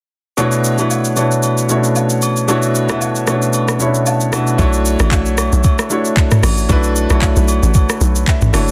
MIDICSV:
0, 0, Header, 1, 4, 480
1, 0, Start_track
1, 0, Key_signature, 2, "minor"
1, 0, Tempo, 526316
1, 346, Time_signature, 4, 2, 24, 8
1, 7946, End_track
2, 0, Start_track
2, 0, Title_t, "Grand piano"
2, 0, Program_c, 0, 0
2, 339, Note_on_c, 0, 47, 103
2, 344, Note_on_c, 0, 57, 90
2, 349, Note_on_c, 0, 62, 91
2, 355, Note_on_c, 0, 64, 89
2, 361, Note_on_c, 0, 66, 93
2, 365, Note_on_c, 0, 73, 113
2, 494, Control_c, 0, 64, 127
2, 635, Note_off_c, 0, 47, 0
2, 637, Note_off_c, 0, 57, 0
2, 640, Note_off_c, 0, 62, 0
2, 643, Note_off_c, 0, 64, 0
2, 646, Note_off_c, 0, 66, 0
2, 648, Note_off_c, 0, 73, 0
2, 711, Note_on_c, 0, 47, 71
2, 716, Note_on_c, 0, 57, 68
2, 721, Note_on_c, 0, 62, 64
2, 727, Note_on_c, 0, 64, 68
2, 732, Note_on_c, 0, 66, 64
2, 737, Note_on_c, 0, 71, 81
2, 997, Note_off_c, 0, 47, 0
2, 1000, Note_off_c, 0, 57, 0
2, 1002, Note_off_c, 0, 62, 0
2, 1005, Note_off_c, 0, 64, 0
2, 1008, Note_off_c, 0, 66, 0
2, 1010, Note_off_c, 0, 71, 0
2, 1057, Note_on_c, 0, 47, 80
2, 1063, Note_on_c, 0, 57, 72
2, 1068, Note_on_c, 0, 62, 76
2, 1074, Note_on_c, 0, 64, 75
2, 1078, Note_on_c, 0, 66, 74
2, 1083, Note_on_c, 0, 73, 90
2, 1455, Note_off_c, 0, 47, 0
2, 1458, Note_off_c, 0, 57, 0
2, 1460, Note_off_c, 0, 62, 0
2, 1463, Note_off_c, 0, 64, 0
2, 1465, Note_off_c, 0, 66, 0
2, 1468, Note_off_c, 0, 73, 0
2, 1539, Note_on_c, 0, 47, 82
2, 1544, Note_on_c, 0, 57, 77
2, 1550, Note_on_c, 0, 61, 61
2, 1555, Note_on_c, 0, 64, 75
2, 1560, Note_on_c, 0, 66, 74
2, 1565, Note_on_c, 0, 73, 88
2, 1607, Note_on_c, 0, 62, 74
2, 1611, Note_off_c, 0, 61, 0
2, 2128, Note_off_c, 0, 47, 0
2, 2130, Note_off_c, 0, 57, 0
2, 2136, Note_off_c, 0, 64, 0
2, 2138, Note_off_c, 0, 66, 0
2, 2141, Note_off_c, 0, 73, 0
2, 2162, Note_off_c, 0, 62, 0
2, 2258, Note_on_c, 0, 47, 99
2, 2264, Note_on_c, 0, 57, 93
2, 2269, Note_on_c, 0, 62, 92
2, 2274, Note_on_c, 0, 64, 96
2, 2279, Note_on_c, 0, 66, 98
2, 2283, Note_on_c, 0, 73, 113
2, 2555, Note_off_c, 0, 47, 0
2, 2558, Note_off_c, 0, 57, 0
2, 2560, Note_off_c, 0, 62, 0
2, 2562, Note_off_c, 0, 64, 0
2, 2565, Note_off_c, 0, 66, 0
2, 2567, Note_off_c, 0, 73, 0
2, 2631, Note_on_c, 0, 47, 78
2, 2635, Note_on_c, 0, 57, 70
2, 2640, Note_on_c, 0, 62, 68
2, 2647, Note_on_c, 0, 64, 69
2, 2652, Note_on_c, 0, 66, 65
2, 2658, Note_on_c, 0, 76, 82
2, 2917, Note_off_c, 0, 47, 0
2, 2919, Note_off_c, 0, 57, 0
2, 2922, Note_off_c, 0, 62, 0
2, 2925, Note_off_c, 0, 64, 0
2, 2928, Note_off_c, 0, 66, 0
2, 2931, Note_off_c, 0, 76, 0
2, 2978, Note_on_c, 0, 47, 88
2, 2983, Note_on_c, 0, 57, 78
2, 2989, Note_on_c, 0, 61, 62
2, 2994, Note_on_c, 0, 64, 79
2, 3000, Note_on_c, 0, 66, 77
2, 3005, Note_on_c, 0, 73, 96
2, 3046, Note_on_c, 0, 62, 78
2, 3050, Note_off_c, 0, 61, 0
2, 3375, Note_off_c, 0, 47, 0
2, 3378, Note_off_c, 0, 57, 0
2, 3383, Note_off_c, 0, 64, 0
2, 3386, Note_off_c, 0, 66, 0
2, 3389, Note_off_c, 0, 73, 0
2, 3409, Note_off_c, 0, 62, 0
2, 3457, Note_on_c, 0, 47, 80
2, 3463, Note_on_c, 0, 57, 77
2, 3467, Note_on_c, 0, 61, 61
2, 3470, Note_on_c, 0, 83, 70
2, 3472, Note_on_c, 0, 64, 76
2, 3477, Note_on_c, 0, 66, 74
2, 3482, Note_on_c, 0, 73, 92
2, 3524, Note_on_c, 0, 62, 74
2, 3529, Note_off_c, 0, 61, 0
2, 3691, Note_off_c, 0, 83, 0
2, 3709, Note_on_c, 0, 81, 78
2, 3855, Note_off_c, 0, 47, 0
2, 3857, Note_off_c, 0, 57, 0
2, 3862, Note_off_c, 0, 64, 0
2, 3865, Note_off_c, 0, 66, 0
2, 3868, Note_off_c, 0, 73, 0
2, 3888, Note_off_c, 0, 62, 0
2, 3931, Note_off_c, 0, 81, 0
2, 3937, Note_on_c, 0, 47, 80
2, 3942, Note_on_c, 0, 57, 72
2, 3948, Note_on_c, 0, 62, 72
2, 3951, Note_on_c, 0, 78, 74
2, 3953, Note_on_c, 0, 64, 74
2, 3959, Note_on_c, 0, 66, 75
2, 3964, Note_on_c, 0, 76, 88
2, 4138, Note_off_c, 0, 47, 0
2, 4141, Note_off_c, 0, 57, 0
2, 4143, Note_off_c, 0, 62, 0
2, 4146, Note_off_c, 0, 64, 0
2, 4149, Note_off_c, 0, 66, 0
2, 4151, Note_off_c, 0, 76, 0
2, 4171, Note_off_c, 0, 78, 0
2, 4178, Note_on_c, 0, 57, 114
2, 4185, Note_on_c, 0, 62, 102
2, 4191, Note_on_c, 0, 64, 101
2, 4196, Control_c, 0, 64, 0
2, 4199, Note_on_c, 0, 66, 102
2, 4206, Note_on_c, 0, 73, 120
2, 4350, Control_c, 0, 64, 127
2, 4955, Note_off_c, 0, 57, 0
2, 4958, Note_off_c, 0, 62, 0
2, 4961, Note_off_c, 0, 64, 0
2, 4965, Note_off_c, 0, 66, 0
2, 4968, Note_off_c, 0, 73, 0
2, 5380, Note_on_c, 0, 57, 89
2, 5386, Note_on_c, 0, 62, 82
2, 5393, Note_on_c, 0, 64, 76
2, 5400, Note_on_c, 0, 66, 80
2, 5406, Note_on_c, 0, 73, 96
2, 5968, Note_off_c, 0, 57, 0
2, 5971, Note_off_c, 0, 62, 0
2, 5975, Note_off_c, 0, 64, 0
2, 5978, Note_off_c, 0, 66, 0
2, 5981, Note_off_c, 0, 73, 0
2, 6099, Note_on_c, 0, 57, 115
2, 6105, Note_on_c, 0, 62, 106
2, 6112, Note_on_c, 0, 64, 101
2, 6118, Note_on_c, 0, 66, 101
2, 6126, Note_on_c, 0, 71, 122
2, 6395, Note_off_c, 0, 57, 0
2, 6398, Note_off_c, 0, 62, 0
2, 6401, Note_off_c, 0, 64, 0
2, 6405, Note_off_c, 0, 66, 0
2, 6408, Note_off_c, 0, 71, 0
2, 6472, Note_on_c, 0, 57, 92
2, 6479, Note_on_c, 0, 62, 82
2, 6485, Note_on_c, 0, 64, 84
2, 6493, Note_on_c, 0, 66, 82
2, 6499, Note_on_c, 0, 73, 96
2, 7238, Note_off_c, 0, 57, 0
2, 7241, Note_off_c, 0, 62, 0
2, 7244, Note_off_c, 0, 64, 0
2, 7248, Note_off_c, 0, 66, 0
2, 7251, Note_off_c, 0, 73, 0
2, 7553, Note_on_c, 0, 76, 82
2, 7778, Note_on_c, 0, 57, 94
2, 7785, Note_on_c, 0, 62, 85
2, 7791, Note_on_c, 0, 64, 87
2, 7797, Note_on_c, 0, 66, 85
2, 7804, Note_on_c, 0, 73, 99
2, 7946, Note_off_c, 0, 57, 0
2, 7946, Note_off_c, 0, 62, 0
2, 7946, Note_off_c, 0, 64, 0
2, 7946, Note_off_c, 0, 66, 0
2, 7946, Note_off_c, 0, 73, 0
2, 7946, Note_off_c, 0, 76, 0
2, 7946, End_track
3, 0, Start_track
3, 0, Title_t, "Log drum bass"
3, 0, Program_c, 1, 39
3, 4186, Note_on_c, 1, 35, 109
3, 4526, Note_off_c, 1, 35, 0
3, 4559, Note_on_c, 1, 33, 90
3, 4797, Note_on_c, 1, 35, 96
3, 4811, Note_off_c, 1, 33, 0
3, 5017, Note_off_c, 1, 35, 0
3, 5040, Note_on_c, 1, 35, 88
3, 5138, Note_off_c, 1, 35, 0
3, 5867, Note_on_c, 1, 33, 92
3, 6086, Note_off_c, 1, 33, 0
3, 6106, Note_on_c, 1, 35, 111
3, 6446, Note_off_c, 1, 35, 0
3, 6477, Note_on_c, 1, 35, 89
3, 6697, Note_off_c, 1, 35, 0
3, 6717, Note_on_c, 1, 35, 97
3, 6937, Note_off_c, 1, 35, 0
3, 6956, Note_on_c, 1, 33, 87
3, 7177, Note_off_c, 1, 33, 0
3, 7305, Note_on_c, 1, 35, 102
3, 7525, Note_off_c, 1, 35, 0
3, 7677, Note_on_c, 1, 33, 90
3, 7776, Note_off_c, 1, 33, 0
3, 7785, Note_on_c, 1, 30, 90
3, 7946, Note_off_c, 1, 30, 0
3, 7946, End_track
4, 0, Start_track
4, 0, Title_t, "Drums"
4, 345, Note_on_c, 9, 67, 70
4, 345, Note_on_c, 9, 82, 71
4, 436, Note_off_c, 9, 67, 0
4, 436, Note_off_c, 9, 82, 0
4, 472, Note_on_c, 9, 82, 58
4, 563, Note_off_c, 9, 82, 0
4, 587, Note_on_c, 9, 82, 87
4, 679, Note_off_c, 9, 82, 0
4, 714, Note_on_c, 9, 82, 57
4, 726, Note_on_c, 9, 67, 69
4, 805, Note_off_c, 9, 82, 0
4, 817, Note_off_c, 9, 67, 0
4, 824, Note_on_c, 9, 77, 69
4, 826, Note_on_c, 9, 82, 61
4, 915, Note_off_c, 9, 77, 0
4, 917, Note_off_c, 9, 82, 0
4, 954, Note_on_c, 9, 82, 49
4, 1046, Note_off_c, 9, 82, 0
4, 1063, Note_on_c, 9, 82, 82
4, 1064, Note_on_c, 9, 67, 64
4, 1154, Note_off_c, 9, 82, 0
4, 1155, Note_off_c, 9, 67, 0
4, 1199, Note_on_c, 9, 82, 53
4, 1290, Note_off_c, 9, 82, 0
4, 1303, Note_on_c, 9, 82, 74
4, 1310, Note_on_c, 9, 67, 58
4, 1394, Note_off_c, 9, 82, 0
4, 1401, Note_off_c, 9, 67, 0
4, 1438, Note_on_c, 9, 82, 61
4, 1530, Note_off_c, 9, 82, 0
4, 1544, Note_on_c, 9, 82, 82
4, 1635, Note_off_c, 9, 82, 0
4, 1677, Note_on_c, 9, 82, 53
4, 1768, Note_off_c, 9, 82, 0
4, 1786, Note_on_c, 9, 82, 69
4, 1787, Note_on_c, 9, 77, 74
4, 1877, Note_off_c, 9, 82, 0
4, 1878, Note_off_c, 9, 77, 0
4, 1913, Note_on_c, 9, 82, 55
4, 2004, Note_off_c, 9, 82, 0
4, 2026, Note_on_c, 9, 82, 88
4, 2031, Note_on_c, 9, 67, 75
4, 2117, Note_off_c, 9, 82, 0
4, 2122, Note_off_c, 9, 67, 0
4, 2157, Note_on_c, 9, 82, 51
4, 2248, Note_off_c, 9, 82, 0
4, 2265, Note_on_c, 9, 67, 72
4, 2266, Note_on_c, 9, 82, 71
4, 2356, Note_off_c, 9, 67, 0
4, 2357, Note_off_c, 9, 82, 0
4, 2393, Note_on_c, 9, 82, 57
4, 2484, Note_off_c, 9, 82, 0
4, 2510, Note_on_c, 9, 82, 89
4, 2601, Note_off_c, 9, 82, 0
4, 2636, Note_on_c, 9, 82, 56
4, 2640, Note_on_c, 9, 37, 93
4, 2648, Note_on_c, 9, 67, 69
4, 2727, Note_off_c, 9, 82, 0
4, 2731, Note_off_c, 9, 37, 0
4, 2739, Note_off_c, 9, 67, 0
4, 2746, Note_on_c, 9, 77, 69
4, 2750, Note_on_c, 9, 82, 62
4, 2837, Note_off_c, 9, 77, 0
4, 2841, Note_off_c, 9, 82, 0
4, 2877, Note_on_c, 9, 82, 50
4, 2968, Note_off_c, 9, 82, 0
4, 2985, Note_on_c, 9, 82, 82
4, 2986, Note_on_c, 9, 67, 66
4, 2987, Note_on_c, 9, 37, 83
4, 3076, Note_off_c, 9, 82, 0
4, 3077, Note_off_c, 9, 67, 0
4, 3078, Note_off_c, 9, 37, 0
4, 3120, Note_on_c, 9, 82, 52
4, 3211, Note_off_c, 9, 82, 0
4, 3221, Note_on_c, 9, 82, 77
4, 3231, Note_on_c, 9, 67, 57
4, 3313, Note_off_c, 9, 82, 0
4, 3322, Note_off_c, 9, 67, 0
4, 3359, Note_on_c, 9, 82, 57
4, 3360, Note_on_c, 9, 37, 94
4, 3450, Note_off_c, 9, 82, 0
4, 3452, Note_off_c, 9, 37, 0
4, 3465, Note_on_c, 9, 82, 85
4, 3556, Note_off_c, 9, 82, 0
4, 3598, Note_on_c, 9, 82, 52
4, 3689, Note_off_c, 9, 82, 0
4, 3706, Note_on_c, 9, 82, 66
4, 3710, Note_on_c, 9, 77, 77
4, 3797, Note_off_c, 9, 82, 0
4, 3801, Note_off_c, 9, 77, 0
4, 3835, Note_on_c, 9, 82, 57
4, 3926, Note_off_c, 9, 82, 0
4, 3947, Note_on_c, 9, 37, 96
4, 3948, Note_on_c, 9, 82, 96
4, 3953, Note_on_c, 9, 67, 76
4, 4038, Note_off_c, 9, 37, 0
4, 4039, Note_off_c, 9, 82, 0
4, 4044, Note_off_c, 9, 67, 0
4, 4078, Note_on_c, 9, 82, 57
4, 4169, Note_off_c, 9, 82, 0
4, 4186, Note_on_c, 9, 36, 112
4, 4187, Note_on_c, 9, 67, 80
4, 4187, Note_on_c, 9, 82, 76
4, 4278, Note_off_c, 9, 36, 0
4, 4278, Note_off_c, 9, 82, 0
4, 4279, Note_off_c, 9, 67, 0
4, 4314, Note_on_c, 9, 82, 60
4, 4406, Note_off_c, 9, 82, 0
4, 4428, Note_on_c, 9, 82, 99
4, 4520, Note_off_c, 9, 82, 0
4, 4555, Note_on_c, 9, 82, 61
4, 4559, Note_on_c, 9, 37, 99
4, 4567, Note_on_c, 9, 67, 74
4, 4646, Note_off_c, 9, 82, 0
4, 4650, Note_off_c, 9, 37, 0
4, 4659, Note_off_c, 9, 67, 0
4, 4664, Note_on_c, 9, 39, 94
4, 4665, Note_on_c, 9, 36, 93
4, 4666, Note_on_c, 9, 77, 75
4, 4668, Note_on_c, 9, 82, 70
4, 4755, Note_off_c, 9, 39, 0
4, 4757, Note_off_c, 9, 36, 0
4, 4757, Note_off_c, 9, 77, 0
4, 4759, Note_off_c, 9, 82, 0
4, 4795, Note_on_c, 9, 82, 55
4, 4886, Note_off_c, 9, 82, 0
4, 4904, Note_on_c, 9, 82, 84
4, 4905, Note_on_c, 9, 37, 91
4, 4906, Note_on_c, 9, 67, 75
4, 4995, Note_off_c, 9, 82, 0
4, 4997, Note_off_c, 9, 37, 0
4, 4997, Note_off_c, 9, 67, 0
4, 5040, Note_on_c, 9, 82, 56
4, 5131, Note_off_c, 9, 82, 0
4, 5141, Note_on_c, 9, 82, 81
4, 5147, Note_on_c, 9, 36, 117
4, 5149, Note_on_c, 9, 67, 64
4, 5232, Note_off_c, 9, 82, 0
4, 5239, Note_off_c, 9, 36, 0
4, 5241, Note_off_c, 9, 67, 0
4, 5279, Note_on_c, 9, 82, 61
4, 5280, Note_on_c, 9, 37, 98
4, 5370, Note_off_c, 9, 82, 0
4, 5371, Note_off_c, 9, 37, 0
4, 5383, Note_on_c, 9, 82, 92
4, 5474, Note_off_c, 9, 82, 0
4, 5518, Note_on_c, 9, 82, 57
4, 5609, Note_off_c, 9, 82, 0
4, 5626, Note_on_c, 9, 36, 94
4, 5627, Note_on_c, 9, 82, 73
4, 5628, Note_on_c, 9, 39, 93
4, 5717, Note_off_c, 9, 36, 0
4, 5718, Note_off_c, 9, 82, 0
4, 5719, Note_off_c, 9, 39, 0
4, 5756, Note_on_c, 9, 82, 60
4, 5760, Note_on_c, 9, 37, 101
4, 5761, Note_on_c, 9, 45, 109
4, 5847, Note_off_c, 9, 82, 0
4, 5851, Note_off_c, 9, 37, 0
4, 5852, Note_off_c, 9, 45, 0
4, 5867, Note_on_c, 9, 37, 105
4, 5868, Note_on_c, 9, 46, 82
4, 5868, Note_on_c, 9, 82, 99
4, 5871, Note_on_c, 9, 67, 83
4, 5958, Note_off_c, 9, 37, 0
4, 5959, Note_off_c, 9, 46, 0
4, 5959, Note_off_c, 9, 82, 0
4, 5963, Note_off_c, 9, 67, 0
4, 5998, Note_on_c, 9, 82, 61
4, 6089, Note_off_c, 9, 82, 0
4, 6105, Note_on_c, 9, 67, 75
4, 6106, Note_on_c, 9, 36, 121
4, 6106, Note_on_c, 9, 82, 75
4, 6196, Note_off_c, 9, 67, 0
4, 6197, Note_off_c, 9, 36, 0
4, 6197, Note_off_c, 9, 82, 0
4, 6232, Note_on_c, 9, 82, 64
4, 6324, Note_off_c, 9, 82, 0
4, 6348, Note_on_c, 9, 82, 97
4, 6439, Note_off_c, 9, 82, 0
4, 6474, Note_on_c, 9, 82, 63
4, 6479, Note_on_c, 9, 37, 99
4, 6485, Note_on_c, 9, 67, 73
4, 6566, Note_off_c, 9, 82, 0
4, 6570, Note_off_c, 9, 37, 0
4, 6576, Note_off_c, 9, 67, 0
4, 6582, Note_on_c, 9, 39, 96
4, 6583, Note_on_c, 9, 77, 76
4, 6585, Note_on_c, 9, 36, 95
4, 6586, Note_on_c, 9, 82, 71
4, 6673, Note_off_c, 9, 39, 0
4, 6674, Note_off_c, 9, 77, 0
4, 6676, Note_off_c, 9, 36, 0
4, 6677, Note_off_c, 9, 82, 0
4, 6715, Note_on_c, 9, 82, 56
4, 6806, Note_off_c, 9, 82, 0
4, 6823, Note_on_c, 9, 82, 85
4, 6824, Note_on_c, 9, 67, 72
4, 6915, Note_off_c, 9, 67, 0
4, 6915, Note_off_c, 9, 82, 0
4, 6960, Note_on_c, 9, 82, 57
4, 7051, Note_off_c, 9, 82, 0
4, 7062, Note_on_c, 9, 82, 83
4, 7067, Note_on_c, 9, 36, 114
4, 7067, Note_on_c, 9, 67, 61
4, 7153, Note_off_c, 9, 82, 0
4, 7158, Note_off_c, 9, 67, 0
4, 7159, Note_off_c, 9, 36, 0
4, 7200, Note_on_c, 9, 82, 66
4, 7201, Note_on_c, 9, 37, 103
4, 7291, Note_off_c, 9, 82, 0
4, 7292, Note_off_c, 9, 37, 0
4, 7305, Note_on_c, 9, 82, 91
4, 7396, Note_off_c, 9, 82, 0
4, 7438, Note_on_c, 9, 82, 55
4, 7529, Note_off_c, 9, 82, 0
4, 7546, Note_on_c, 9, 36, 96
4, 7547, Note_on_c, 9, 82, 71
4, 7548, Note_on_c, 9, 39, 92
4, 7637, Note_off_c, 9, 36, 0
4, 7638, Note_off_c, 9, 82, 0
4, 7639, Note_off_c, 9, 39, 0
4, 7676, Note_on_c, 9, 82, 62
4, 7680, Note_on_c, 9, 45, 108
4, 7767, Note_off_c, 9, 82, 0
4, 7772, Note_off_c, 9, 45, 0
4, 7786, Note_on_c, 9, 37, 101
4, 7787, Note_on_c, 9, 46, 84
4, 7787, Note_on_c, 9, 82, 97
4, 7792, Note_on_c, 9, 67, 86
4, 7877, Note_off_c, 9, 37, 0
4, 7878, Note_off_c, 9, 46, 0
4, 7878, Note_off_c, 9, 82, 0
4, 7883, Note_off_c, 9, 67, 0
4, 7917, Note_on_c, 9, 82, 59
4, 7946, Note_off_c, 9, 82, 0
4, 7946, End_track
0, 0, End_of_file